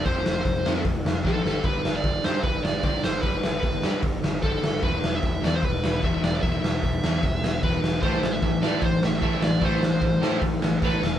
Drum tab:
HH |o-o-o---|o-o-o-o-|o-o-o-o-|o-o-o-o-|
SD |-o-o-ooo|-o-o-o-o|-o-o-o-o|-o-o-o-o|
BD |o-o-o-o-|o-o-o-o-|o-o-o-o-|o-o-o-o-|

HH |o-o-o-o-|o-o-o-o-|o-o-o-o-|
SD |-o-o-o-o|-o-o-o-o|-o-o-o-o|
BD |o-o-o-o-|o-o-o-o-|o-o-o-o-|